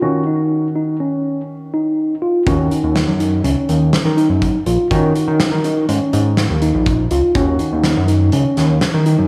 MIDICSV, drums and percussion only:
0, 0, Header, 1, 2, 480
1, 0, Start_track
1, 0, Key_signature, -6, "minor"
1, 0, Tempo, 488599
1, 22, Time_signature, 5, 2, 24, 8
1, 9115, End_track
2, 0, Start_track
2, 0, Title_t, "Drums"
2, 2423, Note_on_c, 9, 36, 112
2, 2425, Note_on_c, 9, 42, 82
2, 2521, Note_off_c, 9, 36, 0
2, 2523, Note_off_c, 9, 42, 0
2, 2666, Note_on_c, 9, 42, 60
2, 2764, Note_off_c, 9, 42, 0
2, 2904, Note_on_c, 9, 38, 107
2, 2904, Note_on_c, 9, 42, 83
2, 3003, Note_off_c, 9, 38, 0
2, 3003, Note_off_c, 9, 42, 0
2, 3145, Note_on_c, 9, 42, 67
2, 3243, Note_off_c, 9, 42, 0
2, 3383, Note_on_c, 9, 42, 77
2, 3482, Note_off_c, 9, 42, 0
2, 3624, Note_on_c, 9, 42, 57
2, 3722, Note_off_c, 9, 42, 0
2, 3861, Note_on_c, 9, 38, 109
2, 3861, Note_on_c, 9, 42, 73
2, 3960, Note_off_c, 9, 38, 0
2, 3960, Note_off_c, 9, 42, 0
2, 4104, Note_on_c, 9, 42, 52
2, 4203, Note_off_c, 9, 42, 0
2, 4341, Note_on_c, 9, 42, 73
2, 4342, Note_on_c, 9, 36, 93
2, 4439, Note_off_c, 9, 42, 0
2, 4440, Note_off_c, 9, 36, 0
2, 4581, Note_on_c, 9, 42, 57
2, 4680, Note_off_c, 9, 42, 0
2, 4823, Note_on_c, 9, 36, 100
2, 4823, Note_on_c, 9, 42, 78
2, 4921, Note_off_c, 9, 36, 0
2, 4921, Note_off_c, 9, 42, 0
2, 5064, Note_on_c, 9, 42, 57
2, 5162, Note_off_c, 9, 42, 0
2, 5302, Note_on_c, 9, 38, 110
2, 5302, Note_on_c, 9, 42, 75
2, 5400, Note_off_c, 9, 38, 0
2, 5400, Note_off_c, 9, 42, 0
2, 5543, Note_on_c, 9, 42, 62
2, 5641, Note_off_c, 9, 42, 0
2, 5784, Note_on_c, 9, 42, 74
2, 5882, Note_off_c, 9, 42, 0
2, 6024, Note_on_c, 9, 42, 61
2, 6122, Note_off_c, 9, 42, 0
2, 6260, Note_on_c, 9, 38, 104
2, 6260, Note_on_c, 9, 42, 81
2, 6359, Note_off_c, 9, 38, 0
2, 6359, Note_off_c, 9, 42, 0
2, 6501, Note_on_c, 9, 42, 61
2, 6599, Note_off_c, 9, 42, 0
2, 6740, Note_on_c, 9, 42, 74
2, 6743, Note_on_c, 9, 36, 98
2, 6838, Note_off_c, 9, 42, 0
2, 6841, Note_off_c, 9, 36, 0
2, 6982, Note_on_c, 9, 42, 65
2, 7081, Note_off_c, 9, 42, 0
2, 7220, Note_on_c, 9, 42, 84
2, 7222, Note_on_c, 9, 36, 113
2, 7318, Note_off_c, 9, 42, 0
2, 7320, Note_off_c, 9, 36, 0
2, 7457, Note_on_c, 9, 42, 58
2, 7555, Note_off_c, 9, 42, 0
2, 7698, Note_on_c, 9, 38, 103
2, 7698, Note_on_c, 9, 42, 85
2, 7796, Note_off_c, 9, 38, 0
2, 7796, Note_off_c, 9, 42, 0
2, 7939, Note_on_c, 9, 42, 62
2, 8038, Note_off_c, 9, 42, 0
2, 8176, Note_on_c, 9, 42, 73
2, 8274, Note_off_c, 9, 42, 0
2, 8420, Note_on_c, 9, 38, 35
2, 8420, Note_on_c, 9, 42, 57
2, 8518, Note_off_c, 9, 38, 0
2, 8518, Note_off_c, 9, 42, 0
2, 8658, Note_on_c, 9, 38, 106
2, 8658, Note_on_c, 9, 42, 75
2, 8756, Note_off_c, 9, 38, 0
2, 8756, Note_off_c, 9, 42, 0
2, 8899, Note_on_c, 9, 42, 56
2, 8997, Note_off_c, 9, 42, 0
2, 9115, End_track
0, 0, End_of_file